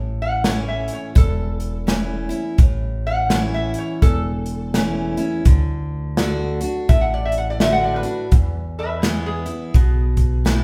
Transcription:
Already playing: upright bass A1, steel-string acoustic guitar A2
0.22 resonator guitar played with a steel bar F#5
0.44 steel-string acoustic guitar E3 A3 C#4 E4, resonator guitar played with a steel bar C#5, snare, closed hi-hat
0.68 resonator guitar played with a steel bar E5
0.88 closed hi-hat
0.93 resonator guitar played with a steel bar C#5
1.15 upright bass E1, steel-string acoustic guitar E2, resonator guitar played with a steel bar A4, kick, closed hi-hat
1.60 closed hi-hat
1.87 steel-string acoustic guitar E3 A3 C#4 E4, snare, closed hi-hat
2.29 steel-string acoustic guitar C#4 E4, closed hi-hat
2.58 upright bass A1, steel-string acoustic guitar A2, kick, closed hi-hat
3.07 resonator guitar played with a steel bar F#5
3.30 steel-string acoustic guitar E3 A3 C#4 E4, resonator guitar played with a steel bar C#5, snare, closed hi-hat
3.54 resonator guitar played with a steel bar E5
3.74 closed hi-hat
3.78 resonator guitar played with a steel bar C#5
4.02 upright bass E1, steel-string acoustic guitar E2, resonator guitar played with a steel bar A4, kick, closed hi-hat
4.46 closed hi-hat
4.74 steel-string acoustic guitar E3 A3 C#4 E4, snare, closed hi-hat
5.17 steel-string acoustic guitar C#4 E4, closed hi-hat
5.45 upright bass D2, steel-string acoustic guitar D3, kick, closed hi-hat
6.17 steel-string acoustic guitar D3 A3 D4 F#4, snare, closed hi-hat
6.61 steel-string acoustic guitar D4 F#4, closed hi-hat
6.89 upright bass A1, steel-string acoustic guitar A2, resonator guitar played with a steel bar E5, kick, closed hi-hat
7.01 resonator guitar played with a steel bar F#5
7.14 resonator guitar played with a steel bar D5
7.25 resonator guitar played with a steel bar E5
7.32 closed hi-hat
7.38 resonator guitar played with a steel bar F#5
7.50 resonator guitar played with a steel bar D5
7.60 steel-string acoustic guitar D3 A3 D4 F#4, resonator guitar played with a steel bar E5, snare, closed hi-hat
7.72 resonator guitar played with a steel bar F#5
7.84 resonator guitar played with a steel bar D5
7.96 resonator guitar played with a steel bar B4
8.03 steel-string acoustic guitar D4 F#4, closed hi-hat
8.32 upright bass E2, kick, closed hi-hat
8.79 resonator guitar played with a steel bar B4 E5
9.02 steel-string acoustic guitar E3 G#3 B3 E4, resonator guitar played with a steel bar G#4 C#5, snare, closed hi-hat
9.26 resonator guitar played with a steel bar G#4
9.46 steel-string acoustic guitar B3 E4, closed hi-hat
9.74 upright bass B1, steel-string acoustic guitar B2, kick, closed hi-hat
10.17 kick, closed hi-hat
10.45 steel-string acoustic guitar E3 G#3 B3 E4, snare, closed hi-hat

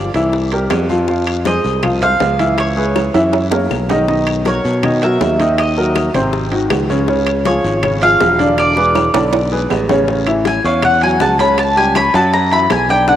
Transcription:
Already playing: mandolin D5
0.14 fingered electric bass C2, grand piano E3 E4 E5, high bongo, high conga, high timbale, short guiro
0.33 high bongo, long guiro
0.52 grand piano G3 G4 A#4, high bongo, high timbale
0.70 fingered electric bass F2, high bongo, low bongo, high conga, high timbale, low timbale, short guiro, claves
0.89 grand piano F3 F4 F5, high conga, short guiro
1.08 grand piano F3 F4 F5, high bongo, long guiro
1.27 high conga, high timbale, claves
1.45 grand piano G#3 G#4 C5, mandolin D#5, high bongo, high conga, high timbale, low timbale, short guiro
1.64 fingered electric bass C2, high conga, short guiro
1.83 grand piano F3 F4 F5, high bongo, high conga, low conga, high timbale, long guiro, claves
2.02 grand piano G#3 G#4 C5, mandolin F5, high conga, low conga, high timbale
2.20 fingered electric bass C#2, high bongo, low bongo, high conga, low timbale, short guiro
2.39 grand piano E3 E4 E5, high conga, high timbale, short guiro
2.58 mandolin C#5, high bongo, high timbale, long guiro, claves
2.77 grand piano G#3 G#4 B4, high bongo, high conga
2.96 high bongo, high conga, high timbale, short guiro, claves
3.14 fingered electric bass F#2, grand piano E3 E4 E5, high bongo, high timbale, short guiro
3.33 high bongo, high timbale, long guiro
3.52 grand piano A#3 A#4 C#5, high bongo, high conga, low timbale
3.71 fingered electric bass B1, low bongo, high conga, short guiro, claves
3.89 grand piano D#3 D#4 D#5, low bongo, high conga, low timbale, short guiro
4.08 grand piano D#3 D#4 D#5, high bongo, long guiro
4.27 high conga, high timbale, claves
4.45 grand piano F#3 F#4 A#4, mandolin C#5, high bongo, high conga, high timbale, low timbale, short guiro
4.65 fingered electric bass B2, high conga, short guiro
4.83 grand piano D#3 D#4 D#5, high bongo, high conga, low conga, high timbale, long guiro, claves
5.02 grand piano F#3 F#4 A#4, mandolin E5, high conga, high timbale
5.21 fingered electric bass D#2, high bongo, low bongo, high conga, low timbale, short guiro
5.40 grand piano D#3 D#4 D#5, high conga, high timbale, short guiro
5.58 mandolin D#5, high bongo, high timbale, long guiro, claves
5.77 grand piano F#3 F#4 A#4, high bongo, high conga
5.95 high bongo, high conga, high timbale, low timbale, short guiro, claves
6.14 fingered electric bass G#1, grand piano C3 C4 C5, high bongo, high timbale, short guiro
6.33 high bongo, high conga, long guiro
6.52 grand piano D#3 D#4 F#4, high bongo, high conga, high timbale
6.70 fingered electric bass C#2, high bongo, low bongo, high conga, high timbale, low timbale, short guiro, claves
6.89 grand piano C#3 C#4 C#5, high conga, short guiro
7.08 grand piano C#3 C#4 C#5, high bongo, long guiro
7.27 high conga, high timbale, claves
7.45 grand piano F3 F4 G#4, mandolin C#5, high bongo, high conga, high timbale, low timbale, short guiro
7.64 fingered electric bass G#1, high conga, short guiro
7.83 grand piano C#3 C#4 C#5, high bongo, high conga, low conga, high timbale, long guiro, claves
8.02 grand piano F3 F4 G#4, mandolin F5, high conga, high timbale
8.21 fingered electric bass E1, high bongo, low bongo, high conga, low timbale, short guiro
8.39 grand piano D3 D4 D5, high conga, high timbale, short guiro
8.58 mandolin D5, high bongo, high conga, high timbale, long guiro, claves
8.77 grand piano G#3 G#4 B4, high bongo, high conga
8.95 high conga, high timbale, short guiro, claves
9.14 fingered electric bass B1, grand piano D3 D4 D5, low bongo, high timbale, short guiro
9.33 low bongo, high timbale, long guiro
9.52 grand piano G#3 G#4 B4, high conga
9.70 fingered electric bass A1, high conga, low timbale, short guiro, claves
9.89 grand piano C#3 C#4 C#5, low bongo, high conga, low timbale, short guiro
10.08 grand piano C#3 C#4 C#5, high bongo, long guiro
10.26 grand piano E3 E4 E5, high conga, high timbale, claves
10.45 mandolin G#5, high bongo, high conga, high timbale, low timbale, short guiro
10.64 fingered electric bass E2, grand piano C#4 C#5 C#6, mandolin F5, high conga, short guiro
10.82 mandolin F#5, high bongo, high conga, low conga, high timbale, long guiro, claves
11.01 grand piano F#3 F#4 F#5, mandolin G#5, high conga, high timbale
11.20 fingered electric bass C#2, mandolin A5, high bongo, low bongo, high conga, low timbale, short guiro
11.38 grand piano C#3 C#4 C#5, mandolin B5, high conga, high timbale, short guiro
11.58 mandolin A5, high bongo, high timbale, long guiro, claves
11.76 grand piano G3 G4 G5, mandolin G#5, high bongo, high conga
11.95 grand piano C#4 C#5 C#6, mandolin B5, high bongo, high conga, high timbale, low timbale, short guiro, claves
12.13 fingered electric bass F#2, grand piano F#3 F#4 F#5, mandolin A5, high bongo, high timbale, short guiro
12.33 mandolin A#5, high bongo, high conga, long guiro
12.51 grand piano E3 E4 E5, mandolin B5, high bongo, high conga, high timbale
12.70 fingered electric bass B1, mandolin G#5, high bongo, low bongo, high conga, high timbale, low timbale, short guiro, claves
12.89 grand piano D4 D5 D6, mandolin G5, high conga, short guiro
13.08 grand piano D3 D4 D5, mandolin F#5, high bongo, long guiro

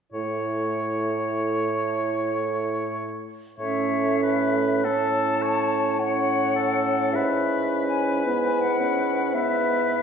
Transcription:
0.12 bassoon A2, french horn A3, clarinet E4, oboe C#5
3.58 bassoon A2, french horn A3, clarinet C#4, oboe C#5, flute E5
4.23 oboe B4
4.84 french horn C#4, clarinet E4, oboe A4, flute A5
5.42 oboe C#5
5.99 french horn C#4, oboe C#5, flute F#5
6.56 oboe A4
7.13 bassoon G#2, oboe B4, flute E5
7.88 flute G#5
8.25 french horn B3, clarinet E4
8.61 flute F#5
8.80 french horn C#4
9.34 french horn B3, oboe B4, flute E5

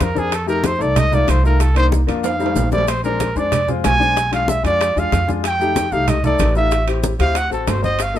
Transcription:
0.00 upright bass F2, trumpet A#4, high bongo, low bongo, high conga, high timbale, maracas
0.15 grand piano C4 D4 A#4, trumpet G#4, high bongo, high conga, maracas
0.32 trumpet A4, high bongo, high conga, high timbale, maracas
0.47 grand piano A3 D#4 G4, trumpet A#4, high conga, maracas
0.64 trumpet C5, high bongo, high conga, high timbale, maracas
0.78 upright bass C2, grand piano A3 D#4 A4, trumpet D5, high conga, maracas
0.96 trumpet D#5, high bongo, high conga, low conga, high timbale, maracas
1.11 grand piano A3 D#4 F4, trumpet D5, high conga, low conga, maracas
1.28 upright bass C2, trumpet C5, high bongo, low bongo, high conga, high timbale, maracas
1.43 grand piano A3 D#4 F4, trumpet A#4, high conga, maracas
1.60 trumpet A4, high bongo, high conga, high timbale, maracas
1.75 grand piano A#3 D4 D#4, trumpet C5, high conga, high timbale, maracas
1.92 high bongo, high conga, maracas
2.07 upright bass F2, grand piano A#3 D4 F4, high bongo, high conga, high timbale, maracas
2.24 trumpet F5, high bongo, high conga, high timbale, maracas
2.39 grand piano G3 A3 D#4, high conga, maracas
2.46 high timbale
2.56 upright bass A#1, low bongo, high conga, low timbale, maracas
2.71 grand piano G3 A3 C4, trumpet D5, low bongo, high conga, maracas
2.78 low timbale
2.88 trumpet C5, high bongo, high conga, high timbale, maracas
3.04 grand piano G#3 C4 D4, trumpet A#4, high conga, maracas
3.20 high bongo, high conga, high timbale, maracas
3.36 upright bass F2, grand piano G#3 C4 D4, trumpet D5, high conga, maracas
3.52 high bongo, high conga, low conga, high timbale, maracas
3.68 grand piano G#3 C4 F4, high conga, low conga, maracas
3.84 upright bass B1, trumpet G#5, high bongo, low bongo, high conga, high timbale, low timbale, maracas
3.99 grand piano G#3 C4 D4, high conga, maracas
4.16 high bongo, high conga, high timbale, maracas
4.31 grand piano G#3 D4 F4, trumpet F5, high conga, high timbale, maracas
4.48 trumpet E5, high bongo, high conga, maracas
4.63 upright bass F2, grand piano G#3 D4 F4, trumpet D5, high bongo, high conga, high timbale, maracas
4.81 high bongo, high conga, high timbale, maracas
4.96 upright bass E2, grand piano G#3 D4 F4, trumpet F5, high bongo, high conga, maracas
5.12 upright bass F2, high bongo, low bongo, high conga, high timbale, maracas
5.27 grand piano G#3 D4 F4, high bongo, high conga, maracas
5.44 trumpet G5, high bongo, high conga, high timbale, maracas
5.59 grand piano A3 D#4 G4, high conga, maracas
5.76 high bongo, high conga, high timbale, maracas
5.92 upright bass C2, grand piano A3 D#4 G4, trumpet F5, high conga, maracas
6.08 trumpet D#5, high bongo, high conga, low conga, high timbale, maracas
6.24 grand piano A3 D#4 A4, trumpet D5, high conga, low conga, maracas
6.39 upright bass A1, high bongo, low bongo, high conga, high timbale, maracas
6.55 grand piano A3 D#4 F4, trumpet E5, high conga, maracas
6.71 high bongo, high conga, high timbale, maracas
6.87 grand piano C4 E4 G4, high conga, high timbale, maracas
7.03 high bongo, high conga, maracas
7.19 upright bass D2, grand piano C4 E4 G4, trumpet F5, high bongo, high conga, high timbale, maracas
7.35 trumpet F#5, high bongo, high conga, high timbale, maracas
7.50 upright bass A1, grand piano C4 F#4 A4, trumpet A4, high bongo, high conga, maracas
7.67 upright bass G1, trumpet C5, high bongo, low bongo, high conga, high timbale, low timbale, maracas
7.82 grand piano C4 F#4 C5, trumpet D#5, high bongo, high conga, maracas
7.99 trumpet F5, high bongo, high conga, high timbale, maracas
8.14 grand piano A#3 F4 A4, trumpet D#5, high conga, maracas

